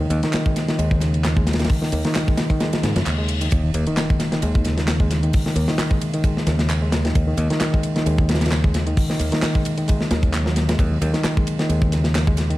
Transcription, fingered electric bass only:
0.10 D#2
0.79 D#2
1.92 D#2
2.83 G#2
2.96 F#2
3.06 D#2
3.52 D#2
3.74 D#2
4.43 D#2
5.56 D#2
6.47 D#2
7.15 D#2
7.37 D#2
8.06 D#2
9.20 D#2
10.11 D#2
10.79 D#2
11.02 D#2
11.69 D#2

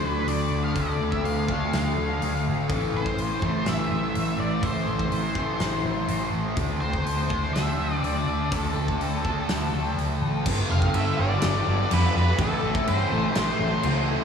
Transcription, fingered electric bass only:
0.03 D2
0.27 D2
0.51 D2
0.76 D2
0.99 D2
1.24 D2
1.73 D2
1.97 D2
2.22 D2
2.47 G#1
2.69 A1
2.94 A1
3.17 A1
3.42 A1
3.67 A1
3.91 A1
4.15 A1
4.39 A1
4.62 A1
4.87 A1
5.11 A1
5.60 A1
5.83 A1
6.09 A1
6.32 A1
6.57 D2
6.82 D2
7.05 D2
7.30 D2
7.55 D2
7.78 D2
8.03 D2
8.26 D2
8.52 D2
8.76 D2
9.01 D2
9.48 D2
9.72 D2
9.97 D2
10.20 A1
10.46 G1
10.70 F1
10.94 G2
11.19 G1
11.44 G1
11.67 G1
11.91 F2
12.15 F2
12.38 A1
12.63 A1
12.88 G2
13.12 A1
13.35 A1
13.59 A1
13.84 C#2

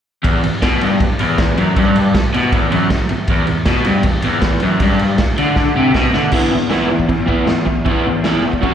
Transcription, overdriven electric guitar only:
0.23 E2
0.44 E2
0.63 B2
0.82 G2
1.01 E2
1.20 E2
1.57 F#2
1.77 G2
2.15 muted overdriven electric guitar stroke
2.34 B2
2.53 E2
2.72 F#2
2.91 E2
3.11 E2
3.30 E2
3.48 E2
3.67 B2
3.86 G2
4.05 E2
4.24 E2
4.62 F#2
4.82 G2
5.20 muted overdriven electric guitar stroke
5.38 D3
5.76 C3
5.95 B2
6.14 D3
6.32 E3 B3 E4
6.52 E3 B3
6.69 E3 B3 E4
6.89 E3 B3
7.09 E3 B3
7.26 E3 B3 E4
7.46 E3 B3
7.66 E3 B3
7.85 E3 B3 E4
8.07 E3 B3
8.25 E3 B3 E4
8.44 E3 B3
8.62 F#3 C#4 F#4

